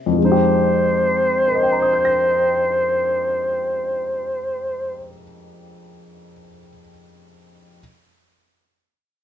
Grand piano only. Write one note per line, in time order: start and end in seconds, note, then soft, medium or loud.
0.00 0.18 C3 medium
0.00 0.18 G3 soft
0.00 0.18 A#3 soft
0.00 0.18 C#4 soft
0.00 0.18 E4 medium
0.06 4.96 F2 medium
0.13 5.02 F3 soft
0.19 5.08 G#3 soft
0.25 5.14 D#4 soft
0.32 5.21 G4 medium
1.48 6.33 A#4 soft
1.55 6.40 D#5 soft
1.63 6.48 G5 soft
1.72 6.58 A#5 soft
1.82 6.67 D#6 soft
1.93 6.79 G6 soft
2.05 6.90 A#6 soft